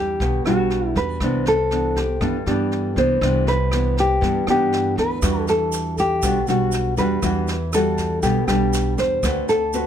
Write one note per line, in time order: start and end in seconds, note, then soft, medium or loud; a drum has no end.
0.00 0.16 E2 medium
0.00 0.18 E3 soft
0.00 0.42 G3 soft
0.00 0.42 D4 soft
0.00 0.46 G4 medium
0.20 0.44 B1 medium
0.20 1.19 B2 soft
0.20 kick soft
0.20 snare soft
0.45 0.92 B1 medium
0.45 1.17 G3 medium
0.45 1.17 D4 medium
0.45 0.98 F#4 medium
0.45 1.18 F#4 medium
0.45 cross-stick medium
0.45 snare soft
0.70 snare soft
0.95 1.19 E2 medium
0.95 1.48 B4 medium
0.95 kick soft
0.95 snare soft
1.20 2.17 C2 medium
1.20 2.19 C3 soft
1.20 1.54 E3 soft
1.20 1.54 B3 soft
1.20 1.54 D4 medium
1.20 kick soft
1.20 cross-stick soft
1.20 snare soft
1.46 1.99 A4 medium
1.46 snare soft
1.71 2.03 E3 soft
1.71 2.04 B3 soft
1.71 2.04 D4 medium
1.71 snare soft
1.96 2.46 G4 medium
1.96 kick soft
1.96 snare soft
2.21 3.19 G2 soft
2.21 2.45 G2 medium
2.21 2.36 E3 soft
2.21 2.36 B3 soft
2.21 2.36 D4 medium
2.21 kick medium
2.21 cross-stick medium
2.21 snare soft
2.46 2.93 G2 medium
2.46 2.93 E3 medium
2.46 2.93 B3 medium
2.46 2.93 D4 medium
2.46 2.98 G4 medium
2.46 snare soft
2.72 snare soft
2.96 3.19 C2 medium
2.96 3.17 E3 medium
2.96 3.18 B3 medium
2.96 3.18 D4 medium
2.96 3.44 C5 medium
2.96 kick soft
2.96 snare soft
3.21 4.18 C2 medium
3.21 4.20 C3 medium
3.21 3.54 E3 medium
3.21 3.54 B3 medium
3.21 3.55 D4 medium
3.21 kick medium
3.21 cross-stick medium
3.21 snare soft
3.47 3.99 B4 medium
3.47 snare soft
3.71 4.04 E3 soft
3.71 4.04 B3 soft
3.71 4.05 D4 medium
3.71 cross-stick soft
3.71 snare soft
3.97 4.49 G4 medium
3.97 kick soft
3.97 snare soft
4.21 5.19 G2 soft
4.21 4.45 G2 medium
4.21 4.43 E3 soft
4.21 4.43 B3 soft
4.21 4.43 D4 soft
4.21 kick soft
4.21 snare soft
4.47 4.94 G2 medium
4.47 5.18 E3 medium
4.47 5.18 B3 medium
4.47 5.19 D4 medium
4.47 4.98 G4 medium
4.47 cross-stick medium
4.47 snare soft
4.72 snare soft
4.97 5.21 D2 medium
4.97 5.49 B4 medium
4.97 kick soft
4.97 snare soft
5.22 6.19 E2 medium
5.22 6.20 E3 soft
5.22 6.19 G3 medium
5.22 6.19 D4 soft
5.22 6.19 F#4 soft
5.22 kick medium
5.22 cross-stick medium
5.22 snare soft
5.22 shaker medium
5.47 5.99 A4 medium
5.47 snare soft
5.47 shaker soft
5.72 snare soft
5.72 shaker medium
5.98 6.45 G4 medium
5.98 kick soft
5.98 snare soft
5.98 shaker soft
6.22 6.46 B1 medium
6.22 7.21 B2 soft
6.22 6.38 G3 soft
6.22 6.38 D4 medium
6.22 6.38 F#4 medium
6.22 kick soft
6.22 cross-stick medium
6.22 snare soft
6.22 shaker medium
6.47 6.94 B1 medium
6.47 6.94 G3 medium
6.47 6.94 D4 medium
6.47 6.94 F#4 medium
6.47 6.98 F#4 medium
6.47 snare soft
6.47 shaker soft
6.72 snare soft
6.72 shaker medium
6.97 7.21 E2 medium
6.97 7.19 G3 medium
6.97 7.19 D4 medium
6.97 7.19 F#4 medium
6.97 7.74 B4 medium
6.97 kick soft
6.97 snare soft
6.97 shaker soft
7.22 8.19 E2 medium
7.22 8.21 E3 soft
7.22 7.55 G3 soft
7.22 7.56 D4 soft
7.22 7.56 F#4 medium
7.22 kick soft
7.22 cross-stick soft
7.22 snare soft
7.22 shaker medium
7.47 snare soft
7.47 shaker soft
7.73 8.20 G3 soft
7.73 8.20 D4 medium
7.73 8.20 F#4 medium
7.73 8.22 A4 medium
7.73 cross-stick soft
7.73 snare soft
7.73 shaker medium
7.98 kick soft
7.98 snare soft
7.98 shaker soft
8.23 8.46 B1 medium
8.23 9.21 B2 medium
8.23 8.38 G3 soft
8.23 8.39 D4 soft
8.23 8.39 F#4 soft
8.23 8.46 G4 medium
8.23 kick soft
8.23 snare soft
8.23 shaker medium
8.47 8.94 B1 medium
8.47 9.20 G3 medium
8.47 9.20 D4 medium
8.47 8.98 G4 medium
8.47 cross-stick medium
8.47 snare soft
8.47 shaker soft
8.73 snare soft
8.73 shaker medium
8.98 9.21 E2 medium
8.98 9.45 C5 medium
8.98 kick soft
8.98 snare soft
8.98 shaker soft
9.23 9.87 D2 medium
9.23 9.87 D3 medium
9.23 9.56 C4 medium
9.23 9.56 F#4 soft
9.23 9.56 B4 medium
9.23 kick soft
9.23 cross-stick medium
9.23 snare soft
9.23 shaker medium
9.48 9.87 A4 medium
9.48 snare soft
9.48 shaker soft
9.73 9.87 C4 medium
9.73 9.87 F#4 medium
9.73 9.87 B4 medium
9.73 snare soft
9.73 shaker medium